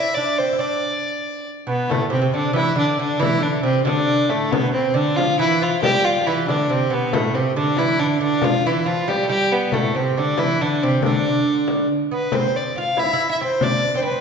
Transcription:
0.00 0.17 E4 medium
0.00 0.16 E5 medium
0.15 0.39 D4 medium
0.15 0.40 D5 medium
0.38 0.54 C4 medium
0.38 0.61 C5 medium
0.53 0.59 E4 soft
0.59 1.43 D4 medium
0.59 1.47 D5 medium
1.67 1.89 B2 medium
1.67 1.92 B3 medium
1.90 2.13 A2 medium
1.90 2.11 A3 medium
1.90 frame drum medium
2.10 2.15 C3 medium
2.10 2.32 C4 medium
2.16 2.20 C3 medium
2.22 2.33 C3 medium
2.34 2.53 D3 medium
2.34 2.55 D4 medium
2.34 frame drum soft
2.53 2.75 E3 medium
2.53 2.76 E4 medium
2.53 frame drum medium
2.75 2.98 D3 medium
2.75 2.98 D4 medium
2.99 3.19 D3 medium
2.99 3.22 D4 medium
3.20 3.40 E3 medium
3.20 3.44 E4 loud
3.20 frame drum medium
3.40 3.63 D3 medium
3.40 3.63 D4 medium
3.63 3.84 C3 medium
3.63 3.85 C4 medium
3.63 frame drum soft
3.85 4.31 D3 medium
3.85 4.32 D4 loud
3.85 frame drum medium
4.29 4.52 A2 medium
4.29 4.53 A3 medium
4.52 4.93 B2 medium
4.52 4.73 B3 medium
4.52 frame drum medium
4.73 4.97 C4 medium
4.94 5.17 D3 medium
4.94 5.18 D4 medium
4.94 frame drum soft
5.17 5.40 F3 medium
5.17 5.39 F4 loud
5.17 frame drum medium
5.39 5.62 E3 medium
5.39 5.65 E4 loud
5.61 5.81 F3 medium
5.61 5.82 F4 medium
5.82 6.20 G3 medium
5.82 6.06 G4 loud
5.82 frame drum medium
6.05 6.28 F4 medium
6.21 6.26 F3 medium
6.26 6.49 E3 medium
6.26 6.47 E4 medium
6.26 frame drum soft
6.48 6.69 D3 medium
6.48 6.72 D4 medium
6.48 frame drum medium
6.69 6.90 C3 medium
6.69 6.95 C4 medium
6.90 7.13 B2 medium
6.90 7.15 B3 medium
7.13 7.36 A2 medium
7.13 7.36 A3 medium
7.13 frame drum medium
7.35 7.56 C3 medium
7.35 7.56 C4 medium
7.56 7.78 D3 medium
7.56 7.80 D4 medium
7.56 frame drum soft
7.77 7.99 E3 medium
7.77 8.01 E4 loud
7.77 frame drum medium
7.99 8.19 D3 medium
7.99 8.21 D4 medium
8.21 8.43 D3 medium
8.21 8.46 D4 medium
8.42 8.66 F3 medium
8.42 8.68 F4 medium
8.42 frame drum medium
8.66 8.88 E3 medium
8.66 8.88 E4 medium
8.86 9.07 F3 medium
8.86 9.10 F4 medium
8.86 frame drum soft
9.08 9.23 G3 medium
9.08 9.29 G4 medium
9.08 frame drum medium
9.23 9.30 A3 medium
9.29 9.74 G3 medium
9.29 9.53 G4 loud
9.52 9.75 B3 medium
9.72 9.96 A2 medium
9.72 9.98 A3 medium
9.72 frame drum medium
9.95 10.15 C3 medium
9.95 10.20 C4 medium
10.17 10.37 D3 medium
10.17 10.40 D4 medium
10.17 frame drum soft
10.38 10.60 E3 medium
10.38 10.63 E4 medium
10.38 frame drum medium
10.61 10.83 D3 medium
10.61 10.84 D4 medium
10.83 11.04 C3 medium
10.83 11.04 C4 medium
11.02 11.87 D3 medium
11.02 11.86 D4 medium
11.02 frame drum medium
11.68 frame drum medium
11.89 frame drum soft
12.11 12.32 B3 medium
12.11 12.37 B4 medium
12.32 12.72 C4 medium
12.32 12.57 C5 medium
12.32 frame drum medium
12.56 12.76 D5 medium
12.75 12.97 F4 medium
12.75 13.01 F5 medium
12.75 frame drum soft
12.97 13.05 E4 medium
12.97 13.31 E5 medium
12.97 frame drum medium
13.06 13.12 E4 medium
13.13 13.28 E4 medium
13.30 13.41 E4 medium
13.30 13.40 E5 medium
13.42 13.63 C4 medium
13.42 13.65 C5 medium
13.61 13.95 D4 medium
13.61 13.95 D5 medium
13.61 frame drum medium
13.95 14.01 C4 medium
13.95 14.04 C5 medium
14.03 14.10 C4 medium
14.03 14.21 B4 medium
14.03 frame drum soft
14.12 14.21 C4 medium

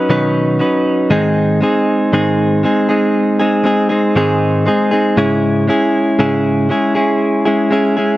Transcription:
0.09 0.60 B2 medium
0.09 0.61 D#3 medium
0.09 0.58 F#3 medium
0.09 0.59 C#4 medium
0.09 0.60 D#4 medium
0.09 0.60 B4 medium
0.59 1.10 F#3 medium
0.59 1.11 C#4 soft
0.59 1.10 D#4 soft
0.59 1.11 B4 soft
1.10 1.62 G#2 medium
1.10 1.62 D#3 medium
1.10 1.60 G#3 medium
1.10 1.61 C4 medium
1.10 1.62 D#4 medium
1.10 1.62 G#4 medium
1.61 2.12 G#3 soft
1.61 2.13 C4 medium
1.61 2.13 D#4 medium
1.61 2.13 G#4 medium
2.13 2.64 G#2 medium
2.13 2.64 D#3 medium
2.13 2.62 G#3 medium
2.13 2.63 C4 medium
2.13 2.64 D#4 medium
2.13 2.64 G#4 medium
2.63 2.89 G#3 soft
2.63 2.89 C4 medium
2.63 2.88 D#4 medium
2.63 2.88 G#4 medium
2.89 3.40 G#3 soft
2.89 3.40 C4 soft
2.89 3.39 D#4 soft
2.89 3.38 G#4 soft
3.39 3.63 G#3 soft
3.39 3.64 C4 soft
3.39 3.64 D#4 soft
3.39 3.65 G#4 soft
3.64 3.90 G#3 soft
3.64 3.90 C4 medium
3.64 3.89 D#4 medium
3.64 3.88 G#4 medium
3.89 4.15 G#3 soft
3.89 4.16 C4 soft
3.89 4.16 D#4 soft
3.89 4.16 G#4 soft
4.16 4.67 G#2 medium
4.16 4.67 D#3 medium
4.16 4.64 G#3 medium
4.16 4.65 C4 medium
4.16 4.66 D#4 medium
4.16 4.67 G#4 medium
4.66 4.92 G#3 soft
4.66 4.92 C4 medium
4.66 4.91 D#4 medium
4.66 4.90 G#4 medium
4.91 5.16 G#3 soft
4.91 5.18 C4 soft
4.91 5.18 D#4 soft
4.91 5.18 G#4 soft
5.17 5.69 G#2 medium
5.17 5.69 C#3 medium
5.17 5.66 G#3 medium
5.17 5.67 C#4 medium
5.17 5.68 E4 medium
5.17 5.69 G#4 medium
5.67 6.18 G#3 medium
5.67 6.18 C#4 medium
5.67 6.19 E4 medium
5.67 6.19 G#4 medium
6.19 6.70 G#2 medium
6.19 6.71 C#3 medium
6.19 6.68 G#3 medium
6.19 6.69 C#4 medium
6.19 6.70 E4 medium
6.19 6.70 G#4 medium
6.69 6.96 G#3 soft
6.69 6.95 C#4 medium
6.69 6.95 E4 medium
6.69 6.94 G#4 medium
6.95 7.46 G#3 soft
6.95 7.46 C#4 soft
6.95 7.45 E4 soft
6.95 7.44 G#4 soft
7.45 7.69 G#3 soft
7.45 7.71 C#4 soft
7.45 7.71 E4 soft
7.45 7.72 G#4 soft
7.71 7.97 G#3 medium
7.71 7.97 C#4 medium
7.71 7.96 E4 medium
7.71 7.96 G#4 medium
7.97 8.17 G#3 soft
7.97 8.17 C#4 soft
7.97 8.17 E4 soft
7.97 8.17 G#4 soft

